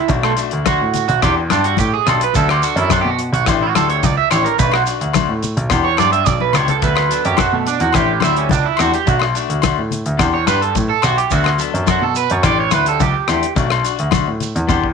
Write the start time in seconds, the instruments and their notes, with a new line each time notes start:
0.08 grand piano B1, clean electric guitar A3 D4 F#4, muted clean electric guitar stroke, kick, closed hi-hat, muted conga, shekere
0.23 clean electric guitar A3, cross-stick, low agogo
0.36 clean electric guitar A3 D4 F#4, closed hi-hat, shekere
0.50 grand piano D2, clean electric guitar D4 F#4, closed hi-hat
0.64 clean electric guitar A3 D4 F#4, kick, cross-stick, closed hi-hat, high conga, low agogo, shekere
0.81 grand piano A2
0.94 closed hi-hat, muted conga, low conga, shekere
1.08 grand piano B1, clean electric guitar F#4, closed hi-hat
1.21 grand piano E2, clean electric guitar B3 D4 G4, kick, cross-stick, closed hi-hat, muted conga, low agogo, shekere
1.37 muted clean electric guitar stroke
1.49 grand piano G2, clean electric guitar B3 D4 G4, cross-stick, closed hi-hat, muted conga, high conga, low agogo, shekere
1.63 clean electric guitar D4 F#4 G4, closed hi-hat
1.77 grand piano A2, clean electric guitar G4, kick, closed hi-hat, high conga, shekere
1.94 clean electric guitar G#4
2.04 grand piano B1, clean electric guitar B3 D4 G4 A4, cross-stick, closed hi-hat, shekere
2.09 low agogo
2.21 clean electric guitar B4, closed hi-hat
2.33 grand piano D2, clean electric guitar F#3 B3 D4 A4, kick, closed hi-hat, muted conga, shekere
2.49 clean electric guitar G4, cross-stick, low agogo
2.63 clean electric guitar D4 F#4 A4, closed hi-hat, shekere
2.76 grand piano F#2, clean electric guitar B3 D4 E4 A4, closed hi-hat
2.89 clean electric guitar F#3 B3 D4 F#4 A4, kick, cross-stick, closed hi-hat, high conga, low agogo, shekere
3.01 grand piano B2, clean electric guitar G4
3.10 clean electric guitar F#4
3.19 closed hi-hat, muted conga
3.33 grand piano B1, clean electric guitar F#4, closed hi-hat
3.45 grand piano A1, clean electric guitar E3 A3 D4 G4, muted clean electric guitar stroke, kick, cross-stick, closed hi-hat, muted conga, low agogo, shekere
3.63 clean electric guitar F#4
3.74 grand piano D2, clean electric guitar E3 D4 G4 A4, cross-stick, closed hi-hat, muted conga, high conga, low agogo, shekere
3.88 clean electric guitar A3 D4 G4 C#5, closed hi-hat
4.03 grand piano C#2, clean electric guitar D5, kick, closed hi-hat, high conga, shekere
4.17 clean electric guitar E5
4.31 grand piano A1, clean electric guitar E3 A3 D4 G4 C#5, cross-stick, closed hi-hat, low agogo, shekere
4.44 clean electric guitar A#4, closed hi-hat
4.58 grand piano B1, clean electric guitar A3 D4 F#4 B4, kick, closed hi-hat, muted conga, shekere
4.72 clean electric guitar F#4, cross-stick, low agogo
4.86 clean electric guitar D4 F#4, closed hi-hat, shekere
4.99 grand piano D2, clean electric guitar D4 F#4, closed hi-hat
5.13 clean electric guitar A3 D4 F#4, kick, cross-stick, closed hi-hat, high conga, low agogo, shekere
5.29 grand piano A2
5.43 closed hi-hat, muted conga, low conga, shekere
5.57 grand piano B1, closed hi-hat
5.70 grand piano E2, clean electric guitar B3 D4 G4, kick, cross-stick, closed hi-hat, muted conga, low agogo, shekere
5.85 clean electric guitar C#5
5.96 grand piano G2, clean electric guitar B3 D4 G4 D5, cross-stick, closed hi-hat, muted conga, high conga, low agogo, shekere
6.11 clean electric guitar D4 G4 E5, closed hi-hat
6.26 grand piano B1, clean electric guitar D5, kick, closed hi-hat, high conga, shekere
6.40 clean electric guitar B4, high conga
6.53 grand piano C#2, clean electric guitar B3 D4 G4 C#5, cross-stick, closed hi-hat, low conga, low agogo, shekere
6.68 clean electric guitar A4, closed hi-hat, low conga
6.82 grand piano D2, clean electric guitar F#3 B3 D4 A4 B4, kick, closed hi-hat, muted conga, shekere
6.96 cross-stick, low agogo
7.09 clean electric guitar F#3 B3 D4 A4, closed hi-hat, shekere
7.22 grand piano F#2, clean electric guitar B3 D4 G4 A4, closed hi-hat
7.37 clean electric guitar F#3 B3 F#4 A4, muted clean electric guitar stroke, kick, cross-stick, closed hi-hat, high conga, low agogo, shekere
7.52 grand piano B2, clean electric guitar A3
7.66 clean electric guitar D4, closed hi-hat, muted conga, shekere
7.80 grand piano E2, clean electric guitar F#4, closed hi-hat
7.93 grand piano A1, clean electric guitar E3 A3 D4 G4, kick, cross-stick, closed hi-hat, muted conga, low agogo, shekere
8.20 grand piano D2, clean electric guitar E3 A3 D4 E4 G4, cross-stick, closed hi-hat, muted conga, high conga, low agogo
8.24 shekere
8.35 clean electric guitar A3 C#4 D4 G4, closed hi-hat
8.49 grand piano C#2, clean electric guitar D4, kick, closed hi-hat, high conga, shekere
8.65 clean electric guitar E4
8.77 grand piano E2, clean electric guitar E3 A3 D4 F#4 G4, cross-stick, closed hi-hat, low agogo, shekere
8.93 clean electric guitar G4, closed hi-hat
9.05 grand piano B1, clean electric guitar A3 D4 F#4, kick, closed hi-hat, muted conga, shekere
9.19 cross-stick, low agogo
9.34 clean electric guitar A3 D4 F#4, closed hi-hat, shekere
9.48 grand piano D2, clean electric guitar D4 F#4, closed hi-hat
9.62 clean electric guitar A3 D4 F#4, kick, cross-stick, closed hi-hat, high conga, low agogo, shekere
9.78 grand piano A2
9.91 closed hi-hat, muted conga, low conga, shekere
10.06 grand piano D2, closed hi-hat
10.17 grand piano E2, clean electric guitar B3 D4 G4, kick, cross-stick, closed hi-hat, muted conga, low agogo, shekere
10.34 clean electric guitar C#5
10.46 grand piano G2, clean electric guitar B3 D4 G4 B4, cross-stick, closed hi-hat, muted conga, high conga, low agogo, shekere
10.61 clean electric guitar D4 G4 A4, closed hi-hat
10.75 grand piano A2, kick, closed hi-hat, high conga, shekere
10.89 clean electric guitar A4
11.02 grand piano B1, clean electric guitar B3 F#4 G4, cross-stick, closed hi-hat, low agogo, shekere
11.18 clean electric guitar G4, closed hi-hat
11.30 grand piano D2, clean electric guitar F#3 B3 D4 F#4 A4, kick, closed hi-hat, muted conga, shekere
11.44 cross-stick, low agogo
11.58 clean electric guitar F#3 B3 D4 A4, closed hi-hat, shekere
11.72 grand piano F#2, clean electric guitar B3 D4 A4, closed hi-hat
11.84 clean electric guitar F#3 B3 D4 A4, kick, cross-stick, closed hi-hat, high conga, low agogo, shekere
11.90 clean electric guitar F#4
12.01 grand piano B2, clean electric guitar A4
12.15 clean electric guitar B4, closed hi-hat, muted conga, shekere
12.30 grand piano F#2, clean electric guitar C#5, closed hi-hat
12.42 grand piano A1, clean electric guitar E3 A3 D4 G4 D5, kick, cross-stick, closed hi-hat, muted conga, low agogo, shekere
12.60 clean electric guitar C#5
12.70 grand piano D2, clean electric guitar E3 A3 D4 B4, muted clean electric guitar stroke, cross-stick, closed hi-hat, muted conga, high conga, low agogo, shekere
12.85 clean electric guitar A3 D4 G4 A4, closed hi-hat
13.00 grand piano C#2, clean electric guitar G4, kick, closed hi-hat, high conga, shekere
13.28 grand piano E2, clean electric guitar E3 A3 D4 G4, cross-stick, closed hi-hat, low agogo, shekere
13.43 closed hi-hat
13.55 grand piano B1, clean electric guitar A3 D4 F#4, kick, closed hi-hat, muted conga, shekere
13.70 cross-stick, low agogo
13.82 clean electric guitar D4 F#4, muted clean electric guitar stroke, closed hi-hat, shekere
13.96 grand piano D2, clean electric guitar F#4, closed hi-hat
14.11 clean electric guitar A3 D4 F#4, kick, cross-stick, closed hi-hat, high conga, low agogo, shekere
14.28 grand piano A2
14.40 closed hi-hat, muted conga, low conga, shekere
14.55 grand piano E2, closed hi-hat
14.67 grand piano E2, clean electric guitar B3 D4 G4, kick, high tom, muted conga, low agogo, shekere
14.84 kick